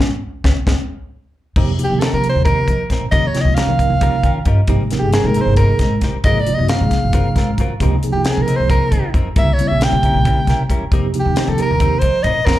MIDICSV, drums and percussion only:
0, 0, Header, 1, 2, 480
1, 0, Start_track
1, 0, Time_signature, 7, 3, 24, 8
1, 0, Tempo, 445765
1, 13558, End_track
2, 0, Start_track
2, 0, Title_t, "Drums"
2, 0, Note_on_c, 9, 36, 79
2, 6, Note_on_c, 9, 38, 81
2, 103, Note_off_c, 9, 36, 0
2, 114, Note_off_c, 9, 38, 0
2, 477, Note_on_c, 9, 36, 77
2, 486, Note_on_c, 9, 38, 78
2, 585, Note_off_c, 9, 36, 0
2, 594, Note_off_c, 9, 38, 0
2, 719, Note_on_c, 9, 36, 91
2, 727, Note_on_c, 9, 38, 90
2, 826, Note_off_c, 9, 36, 0
2, 835, Note_off_c, 9, 38, 0
2, 1678, Note_on_c, 9, 49, 76
2, 1681, Note_on_c, 9, 36, 90
2, 1786, Note_off_c, 9, 49, 0
2, 1788, Note_off_c, 9, 36, 0
2, 1928, Note_on_c, 9, 42, 53
2, 2035, Note_off_c, 9, 42, 0
2, 2167, Note_on_c, 9, 42, 57
2, 2178, Note_on_c, 9, 38, 91
2, 2275, Note_off_c, 9, 42, 0
2, 2286, Note_off_c, 9, 38, 0
2, 2408, Note_on_c, 9, 42, 49
2, 2515, Note_off_c, 9, 42, 0
2, 2643, Note_on_c, 9, 36, 88
2, 2646, Note_on_c, 9, 42, 63
2, 2751, Note_off_c, 9, 36, 0
2, 2754, Note_off_c, 9, 42, 0
2, 2882, Note_on_c, 9, 36, 54
2, 2887, Note_on_c, 9, 42, 51
2, 2990, Note_off_c, 9, 36, 0
2, 2995, Note_off_c, 9, 42, 0
2, 3122, Note_on_c, 9, 36, 57
2, 3124, Note_on_c, 9, 42, 48
2, 3135, Note_on_c, 9, 38, 27
2, 3230, Note_off_c, 9, 36, 0
2, 3232, Note_off_c, 9, 42, 0
2, 3243, Note_off_c, 9, 38, 0
2, 3361, Note_on_c, 9, 36, 94
2, 3362, Note_on_c, 9, 42, 68
2, 3469, Note_off_c, 9, 36, 0
2, 3469, Note_off_c, 9, 42, 0
2, 3603, Note_on_c, 9, 42, 55
2, 3613, Note_on_c, 9, 38, 31
2, 3710, Note_off_c, 9, 42, 0
2, 3721, Note_off_c, 9, 38, 0
2, 3840, Note_on_c, 9, 42, 71
2, 3851, Note_on_c, 9, 38, 84
2, 3948, Note_off_c, 9, 42, 0
2, 3959, Note_off_c, 9, 38, 0
2, 4082, Note_on_c, 9, 36, 58
2, 4087, Note_on_c, 9, 42, 54
2, 4190, Note_off_c, 9, 36, 0
2, 4195, Note_off_c, 9, 42, 0
2, 4319, Note_on_c, 9, 42, 73
2, 4322, Note_on_c, 9, 36, 94
2, 4427, Note_off_c, 9, 42, 0
2, 4429, Note_off_c, 9, 36, 0
2, 4560, Note_on_c, 9, 36, 67
2, 4562, Note_on_c, 9, 42, 51
2, 4668, Note_off_c, 9, 36, 0
2, 4669, Note_off_c, 9, 42, 0
2, 4796, Note_on_c, 9, 42, 54
2, 4799, Note_on_c, 9, 36, 59
2, 4904, Note_off_c, 9, 42, 0
2, 4906, Note_off_c, 9, 36, 0
2, 5034, Note_on_c, 9, 42, 71
2, 5038, Note_on_c, 9, 36, 90
2, 5142, Note_off_c, 9, 42, 0
2, 5145, Note_off_c, 9, 36, 0
2, 5282, Note_on_c, 9, 42, 53
2, 5293, Note_on_c, 9, 38, 27
2, 5390, Note_off_c, 9, 42, 0
2, 5401, Note_off_c, 9, 38, 0
2, 5519, Note_on_c, 9, 42, 63
2, 5530, Note_on_c, 9, 38, 93
2, 5627, Note_off_c, 9, 42, 0
2, 5638, Note_off_c, 9, 38, 0
2, 5754, Note_on_c, 9, 42, 50
2, 5862, Note_off_c, 9, 42, 0
2, 5993, Note_on_c, 9, 42, 67
2, 5998, Note_on_c, 9, 36, 82
2, 6101, Note_off_c, 9, 42, 0
2, 6106, Note_off_c, 9, 36, 0
2, 6235, Note_on_c, 9, 42, 51
2, 6237, Note_on_c, 9, 36, 61
2, 6246, Note_on_c, 9, 38, 29
2, 6343, Note_off_c, 9, 42, 0
2, 6345, Note_off_c, 9, 36, 0
2, 6354, Note_off_c, 9, 38, 0
2, 6476, Note_on_c, 9, 42, 47
2, 6479, Note_on_c, 9, 36, 71
2, 6486, Note_on_c, 9, 38, 28
2, 6583, Note_off_c, 9, 42, 0
2, 6586, Note_off_c, 9, 36, 0
2, 6594, Note_off_c, 9, 38, 0
2, 6717, Note_on_c, 9, 42, 71
2, 6720, Note_on_c, 9, 36, 100
2, 6825, Note_off_c, 9, 42, 0
2, 6828, Note_off_c, 9, 36, 0
2, 6962, Note_on_c, 9, 42, 58
2, 7070, Note_off_c, 9, 42, 0
2, 7198, Note_on_c, 9, 42, 64
2, 7209, Note_on_c, 9, 38, 94
2, 7306, Note_off_c, 9, 42, 0
2, 7317, Note_off_c, 9, 38, 0
2, 7441, Note_on_c, 9, 36, 57
2, 7441, Note_on_c, 9, 42, 54
2, 7451, Note_on_c, 9, 38, 29
2, 7548, Note_off_c, 9, 36, 0
2, 7548, Note_off_c, 9, 42, 0
2, 7559, Note_off_c, 9, 38, 0
2, 7677, Note_on_c, 9, 42, 72
2, 7680, Note_on_c, 9, 36, 88
2, 7785, Note_off_c, 9, 42, 0
2, 7787, Note_off_c, 9, 36, 0
2, 7922, Note_on_c, 9, 36, 64
2, 7924, Note_on_c, 9, 42, 50
2, 7935, Note_on_c, 9, 38, 28
2, 8029, Note_off_c, 9, 36, 0
2, 8031, Note_off_c, 9, 42, 0
2, 8042, Note_off_c, 9, 38, 0
2, 8162, Note_on_c, 9, 36, 59
2, 8162, Note_on_c, 9, 42, 55
2, 8270, Note_off_c, 9, 36, 0
2, 8270, Note_off_c, 9, 42, 0
2, 8403, Note_on_c, 9, 36, 84
2, 8406, Note_on_c, 9, 42, 76
2, 8510, Note_off_c, 9, 36, 0
2, 8513, Note_off_c, 9, 42, 0
2, 8644, Note_on_c, 9, 42, 55
2, 8752, Note_off_c, 9, 42, 0
2, 8880, Note_on_c, 9, 42, 71
2, 8890, Note_on_c, 9, 38, 81
2, 8987, Note_off_c, 9, 42, 0
2, 8998, Note_off_c, 9, 38, 0
2, 9129, Note_on_c, 9, 42, 58
2, 9236, Note_off_c, 9, 42, 0
2, 9364, Note_on_c, 9, 36, 87
2, 9365, Note_on_c, 9, 42, 69
2, 9471, Note_off_c, 9, 36, 0
2, 9473, Note_off_c, 9, 42, 0
2, 9603, Note_on_c, 9, 36, 63
2, 9604, Note_on_c, 9, 42, 60
2, 9711, Note_off_c, 9, 36, 0
2, 9711, Note_off_c, 9, 42, 0
2, 9843, Note_on_c, 9, 36, 69
2, 9846, Note_on_c, 9, 42, 51
2, 9950, Note_off_c, 9, 36, 0
2, 9954, Note_off_c, 9, 42, 0
2, 10079, Note_on_c, 9, 42, 71
2, 10081, Note_on_c, 9, 36, 95
2, 10186, Note_off_c, 9, 42, 0
2, 10188, Note_off_c, 9, 36, 0
2, 10325, Note_on_c, 9, 42, 55
2, 10433, Note_off_c, 9, 42, 0
2, 10563, Note_on_c, 9, 42, 70
2, 10574, Note_on_c, 9, 38, 92
2, 10671, Note_off_c, 9, 42, 0
2, 10682, Note_off_c, 9, 38, 0
2, 10801, Note_on_c, 9, 36, 64
2, 10804, Note_on_c, 9, 42, 51
2, 10909, Note_off_c, 9, 36, 0
2, 10912, Note_off_c, 9, 42, 0
2, 11041, Note_on_c, 9, 36, 92
2, 11041, Note_on_c, 9, 42, 72
2, 11149, Note_off_c, 9, 36, 0
2, 11149, Note_off_c, 9, 42, 0
2, 11278, Note_on_c, 9, 36, 58
2, 11280, Note_on_c, 9, 42, 53
2, 11291, Note_on_c, 9, 38, 28
2, 11386, Note_off_c, 9, 36, 0
2, 11387, Note_off_c, 9, 42, 0
2, 11398, Note_off_c, 9, 38, 0
2, 11517, Note_on_c, 9, 36, 62
2, 11522, Note_on_c, 9, 42, 54
2, 11625, Note_off_c, 9, 36, 0
2, 11629, Note_off_c, 9, 42, 0
2, 11755, Note_on_c, 9, 36, 94
2, 11758, Note_on_c, 9, 42, 63
2, 11863, Note_off_c, 9, 36, 0
2, 11865, Note_off_c, 9, 42, 0
2, 11994, Note_on_c, 9, 42, 54
2, 12101, Note_off_c, 9, 42, 0
2, 12232, Note_on_c, 9, 42, 66
2, 12243, Note_on_c, 9, 38, 94
2, 12340, Note_off_c, 9, 42, 0
2, 12351, Note_off_c, 9, 38, 0
2, 12469, Note_on_c, 9, 42, 52
2, 12577, Note_off_c, 9, 42, 0
2, 12707, Note_on_c, 9, 42, 78
2, 12708, Note_on_c, 9, 36, 92
2, 12815, Note_off_c, 9, 42, 0
2, 12816, Note_off_c, 9, 36, 0
2, 12939, Note_on_c, 9, 42, 61
2, 12945, Note_on_c, 9, 36, 63
2, 13046, Note_off_c, 9, 42, 0
2, 13052, Note_off_c, 9, 36, 0
2, 13180, Note_on_c, 9, 42, 50
2, 13184, Note_on_c, 9, 36, 57
2, 13288, Note_off_c, 9, 42, 0
2, 13292, Note_off_c, 9, 36, 0
2, 13423, Note_on_c, 9, 36, 75
2, 13431, Note_on_c, 9, 38, 76
2, 13531, Note_off_c, 9, 36, 0
2, 13539, Note_off_c, 9, 38, 0
2, 13558, End_track
0, 0, End_of_file